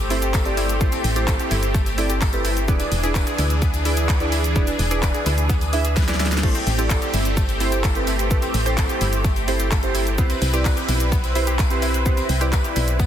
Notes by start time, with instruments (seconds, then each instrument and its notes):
Already playing: fm bass G1, supersaw synth A3 C4 G4
0.10 synth keys C4 E4 G4 A4 C5, synth pluck E4, open hi-hat, shaker
0.22 synth pluck G4, closed hi-hat, shaker
0.34 synth pluck A4, kick, clap, tambourine, shaker
0.45 synth keys C4 E4 G4 A4 D5, closed hi-hat, shaker
0.57 synth pluck E4, open hi-hat, tambourine, shaker
0.69 closed hi-hat, tambourine, shaker
0.81 fm bass A1, synth pluck A3, synth keys C4 E4 G4 A4 C5, kick, shaker
0.92 synth pluck C4, closed hi-hat, tambourine, shaker
1.04 fm bass A1, open hi-hat, tambourine, shaker
1.16 synth keys C4 E4 G4 A4 C5, synth pluck G4, closed hi-hat, shaker
1.28 synth pluck A4, kick, clap, tambourine, shaker
1.39 synth pluck G4, closed hi-hat, shaker
1.51 fm bass G1, synth pluck E4, open hi-hat, tambourine, shaker
1.63 closed hi-hat, shaker
1.74 synth pluck A3, kick, tambourine, shaker
1.86 closed hi-hat, tambourine, shaker
1.98 synth keys C4 E4 G4 A4 D5, synth pluck E4, open hi-hat, shaker
2.10 synth pluck G4, closed hi-hat, shaker
2.21 synth pluck A4, kick, clap, tambourine, shaker
2.33 synth keys C4 E4 G4 A4 B4, closed hi-hat, shaker
2.45 synth pluck E4, open hi-hat, tambourine, shaker
2.57 closed hi-hat, tambourine, shaker
2.68 fm bass E1, supersaw synth E3 D4 G#4, synth pluck B3, synth keys D4 E4 G#4 B4 D5, kick, shaker
2.80 synth pluck D4, closed hi-hat, tambourine, shaker
2.92 fm bass E1, open hi-hat, tambourine, shaker
3.03 synth keys D4 E4 G#4 B4 D5, synth pluck G#4, closed hi-hat, tambourine, shaker
3.15 synth pluck B4, kick, clap, tambourine, shaker
3.27 synth pluck G#4, closed hi-hat, tambourine, shaker
3.39 fm bass D2, synth pluck E4, open hi-hat, tambourine, shaker
3.50 closed hi-hat, shaker
3.62 synth pluck B3, kick, tambourine, shaker
3.74 closed hi-hat, tambourine, shaker
3.85 synth keys D4 E4 G#4 B4 D5, synth pluck E4, open hi-hat, shaker
3.97 synth pluck G#4, closed hi-hat, shaker
4.09 synth pluck B4, kick, clap, tambourine, shaker
4.20 synth keys D4 E4 G#4 B4 D5, closed hi-hat, shaker
4.32 synth pluck E4, open hi-hat, tambourine, shaker
4.44 closed hi-hat, tambourine, shaker
4.55 fm bass E1, synth pluck B3, synth keys D4 E4 G#4 B4 D5, kick, shaker
4.67 synth pluck D4, closed hi-hat, tambourine, shaker
4.79 fm bass E1, open hi-hat, tambourine, shaker
4.91 synth keys D4 E4 G#4 B4 D5, synth pluck G#4, closed hi-hat, tambourine, shaker
5.03 synth pluck B4, kick, clap, tambourine, shaker
5.14 synth pluck G#4, closed hi-hat, tambourine, shaker
5.26 fm bass D2, synth pluck E4, open hi-hat, tambourine, shaker
5.38 closed hi-hat, shaker
5.50 synth pluck B3, kick, tambourine, shaker
5.61 closed hi-hat, tambourine, shaker
5.73 synth keys D4 E4 G#4 B4 E5, synth pluck E4, open hi-hat, shaker
5.85 synth pluck G#4, closed hi-hat, shaker
5.96 synth pluck B4, kick, snare, tambourine, shaker
6.02 snare
6.08 synth keys D4 E4 G#4 B4 D5, snare, closed hi-hat, shaker
6.14 snare
6.20 synth pluck E4, snare, open hi-hat, tambourine, shaker
6.26 snare
6.32 snare, closed hi-hat, shaker
6.38 snare
6.43 fm bass A1, synth pluck A3, supersaw synth A3 C4 G4, synth keys C4 E4 G4 A4 C5, kick, crash
6.55 synth pluck C4, closed hi-hat, tambourine, shaker
6.67 fm bass A1, open hi-hat, tambourine, shaker
6.78 synth keys C4 E4 G4 A4 D5, synth pluck G4, closed hi-hat, shaker
6.90 synth pluck A4, kick, clap, tambourine, shaker
7.02 synth pluck G4, closed hi-hat, tambourine, shaker
7.14 fm bass G1, synth pluck E4, open hi-hat, tambourine, shaker
7.25 closed hi-hat, tambourine, shaker
7.37 synth pluck A3, kick, tambourine, shaker
7.49 closed hi-hat, tambourine, shaker
7.60 synth keys C4 E4 G4 A4 C5, synth pluck E4, open hi-hat, shaker
7.72 synth pluck G4, closed hi-hat, shaker
7.84 synth pluck A4, kick, clap, tambourine, shaker
7.95 synth keys C4 E4 G4 A4 B4, closed hi-hat, shaker
8.07 synth pluck E4, open hi-hat, tambourine, shaker
8.19 closed hi-hat, shaker
8.31 fm bass A1, synth pluck A3, synth keys C4 E4 G4 A4 B4, kick, shaker
8.42 synth pluck C4, closed hi-hat, tambourine, shaker
8.54 fm bass A1, open hi-hat, tambourine, shaker
8.66 synth keys C4 E4 G4 A4 C5, synth pluck G4, closed hi-hat, tambourine, shaker
8.78 synth pluck A4, kick, clap, tambourine, shaker
8.89 synth pluck G4, closed hi-hat, shaker
9.01 fm bass G1, synth pluck E4, open hi-hat, tambourine, shaker
9.13 closed hi-hat, tambourine, shaker
9.24 synth pluck A3, kick, tambourine, shaker
9.36 closed hi-hat, tambourine, shaker
9.48 synth keys C4 E4 G4 A4 C5, synth pluck E4, open hi-hat, shaker
9.60 synth pluck G4, closed hi-hat, shaker
9.71 synth pluck A4, kick, clap, tambourine, shaker
9.83 synth keys C4 E4 G4 A4 C5, closed hi-hat, shaker
9.95 synth pluck E4, open hi-hat, tambourine, shaker
10.07 closed hi-hat, tambourine, shaker
10.18 fm bass C2, synth pluck B3, synth keys C4 E4 G4 B4 C5, supersaw synth C4 E4 B4, kick, shaker
10.30 synth pluck C4, closed hi-hat, tambourine, shaker
10.42 fm bass C2, open hi-hat, tambourine, shaker
10.53 synth keys C4 E4 G4 B4 D5, synth pluck G4, closed hi-hat, tambourine, shaker
10.65 synth pluck B4, kick, clap, tambourine, shaker
10.77 synth pluck G4, closed hi-hat, shaker
10.89 fm bass B1, synth pluck E4, open hi-hat, tambourine, shaker
11.00 closed hi-hat, tambourine, shaker
11.12 synth pluck B3, kick, tambourine, shaker
11.24 closed hi-hat, tambourine, shaker
11.35 synth keys C4 E4 G4 B4 C5, synth pluck E4, open hi-hat, shaker
11.47 synth pluck G4, closed hi-hat, shaker
11.59 synth pluck B4, kick, clap, tambourine, shaker
11.70 synth keys C4 E4 G4 B4 C5, closed hi-hat, shaker
11.82 synth pluck E4, open hi-hat, tambourine, shaker
11.94 closed hi-hat, tambourine, shaker
12.06 fm bass C2, synth pluck B3, synth keys C4 E4 G4 B4 C5, kick, shaker
12.17 synth pluck C4, closed hi-hat, tambourine, shaker
12.29 fm bass C2, open hi-hat, tambourine, shaker
12.41 synth keys C4 E4 G4 B4 D5, synth pluck G4, closed hi-hat, tambourine, shaker
12.53 synth pluck B4, kick, clap, tambourine, shaker
12.64 synth pluck G4, closed hi-hat, tambourine, shaker
12.76 fm bass B1, synth pluck E4, open hi-hat, tambourine, shaker
12.88 closed hi-hat, shaker
13.00 synth pluck B3, kick, high tom, tambourine, shaker